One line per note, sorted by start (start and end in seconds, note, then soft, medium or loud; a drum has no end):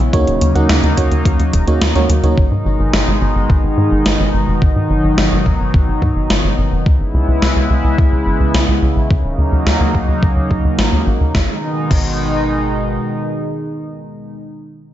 0.00 0.12 B1 medium
0.00 2.34 C#3 medium
0.00 0.11 G#3 medium
0.00 0.11 B3 medium
0.00 0.11 E4 medium
0.13 0.26 D#2 loud
0.13 2.35 F#3 medium
0.13 2.35 A#3 medium
0.13 0.52 A#3 loud
0.13 0.52 C#4 medium
0.13 2.35 D#4 medium
0.13 0.52 D#4 medium
0.13 0.52 F#4 medium
0.13 0.52 C#5 loud
0.13 kick loud
0.13 closed hi-hat medium
0.27 0.40 D#1 medium
0.27 closed hi-hat soft
0.41 0.54 D#2 medium
0.41 closed hi-hat medium
0.55 0.68 D#2 medium
0.55 0.78 A#3 medium
0.55 0.78 C#4 medium
0.55 0.78 D#4 medium
0.55 0.78 F#4 medium
0.55 0.78 F#5 loud
0.55 closed hi-hat soft
0.69 0.82 D#2 loud
0.69 snare loud
0.69 closed hi-hat medium
0.83 0.96 D#2 medium
0.83 closed hi-hat soft
0.97 1.10 D#2 medium
0.97 1.50 A#3 medium
0.97 1.50 C#4 medium
0.97 1.50 D#4 medium
0.97 1.50 F#4 medium
0.97 1.50 C#5 medium
0.97 kick medium
0.97 closed hi-hat medium
1.12 1.24 D#2 medium
1.12 closed hi-hat soft
1.25 1.38 D#2 loud
1.25 kick loud
1.25 closed hi-hat medium
1.40 1.52 D#2 medium
1.40 closed hi-hat soft
1.53 1.66 D#1 medium
1.53 kick medium
1.53 closed hi-hat medium
1.68 1.80 D#2 medium
1.68 1.90 A#3 medium
1.68 1.90 C#4 medium
1.68 1.90 D#4 medium
1.68 1.90 F#4 medium
1.68 1.90 C#5 medium
1.68 closed hi-hat soft
1.81 1.94 D#2 loud
1.81 snare loud
1.81 closed hi-hat medium
1.96 2.08 D#2 medium
1.96 2.10 A#3 medium
1.96 2.10 C#4 medium
1.96 2.10 D#4 medium
1.96 2.10 F#4 medium
1.96 2.10 C#5 loud
1.96 closed hi-hat soft
2.09 2.22 D#2 medium
2.09 closed hi-hat medium
2.23 2.36 D#2 medium
2.23 2.34 A#3 medium
2.23 2.34 C#4 medium
2.23 2.34 D#4 medium
2.23 2.34 F#4 medium
2.23 2.34 C#5 medium
2.23 closed hi-hat soft
2.38 2.50 G#1 loud
2.38 6.82 B2 medium
2.38 6.82 D#3 medium
2.38 4.60 G#3 medium
2.38 6.82 D#4 medium
2.38 kick loud
2.52 2.64 G#2 medium
2.65 2.78 G#1 medium
2.80 2.92 G#1 medium
2.93 3.06 G#1 loud
2.93 snare loud
3.08 3.20 G#1 medium
3.21 3.34 G#1 medium
3.35 3.48 G#1 medium
3.50 3.62 G#1 medium
3.50 kick loud
3.63 3.76 G#1 medium
3.78 3.90 G#2 medium
3.92 4.04 G#1 medium
4.06 4.18 G#1 loud
4.06 snare loud
4.20 4.32 G#1 medium
4.34 4.46 G#1 medium
4.48 4.60 F#1 medium
4.62 4.74 G#1 loud
4.62 6.84 F#3 medium
4.62 kick loud
4.76 4.88 G#2 medium
4.90 5.02 G#1 loud
5.04 5.16 G#1 medium
5.18 5.30 G#1 loud
5.18 snare loud
5.32 5.44 G#1 medium
5.46 5.58 G#1 medium
5.46 kick medium
5.60 5.72 G#1 medium
5.74 5.86 G#1 loud
5.74 kick loud
5.88 6.01 G#1 medium
6.02 6.15 G#2 medium
6.02 kick medium
6.16 6.28 G#1 medium
6.30 6.43 G#1 loud
6.30 snare loud
6.44 6.57 G#1 medium
6.58 6.70 G#1 medium
6.72 6.84 F#1 medium
6.86 6.99 C#2 loud
6.86 11.31 C#3 medium
6.86 9.08 G#3 medium
6.86 9.08 B3 medium
6.86 9.08 E4 medium
6.86 kick loud
7.00 7.13 G#1 medium
7.14 7.27 C#2 loud
7.28 7.41 C#2 medium
7.42 7.55 C#2 loud
7.42 snare loud
7.56 7.69 C#2 medium
7.70 7.83 C#2 medium
7.84 7.97 C#2 medium
7.98 8.11 C#2 loud
7.98 kick loud
8.12 8.25 C#2 medium
8.26 8.39 G#1 medium
8.40 8.53 C#2 medium
8.54 8.67 C#2 loud
8.54 snare loud
8.68 8.81 C#2 medium
8.82 8.95 C#2 medium
8.96 9.09 B1 medium
9.10 9.23 D#2 loud
9.10 11.32 F#3 medium
9.10 11.32 A#3 medium
9.10 11.32 D#4 medium
9.10 kick loud
9.24 9.37 D#1 medium
9.38 9.51 D#2 medium
9.52 9.65 D#2 medium
9.66 9.79 D#2 medium
9.66 snare loud
9.80 9.93 D#2 medium
9.95 10.07 D#2 medium
9.95 kick medium
10.08 10.21 D#2 medium
10.23 10.35 D#2 loud
10.23 kick loud
10.36 10.49 D#2 medium
10.51 10.63 D#2 medium
10.51 kick medium
10.65 10.77 D#2 medium
10.79 10.91 A#1 loud
10.79 snare loud
10.93 11.05 D#2 medium
11.07 11.19 A#1 loud
11.21 11.33 D#2 medium
11.35 11.50 G#1 loud
11.35 14.35 B2 medium
11.35 14.35 D#3 medium
11.35 14.35 G#3 medium
11.35 14.35 D#4 medium
11.35 kick loud
11.35 snare medium
11.91 12.99 G#1 loud
11.91 kick loud
11.91 crash medium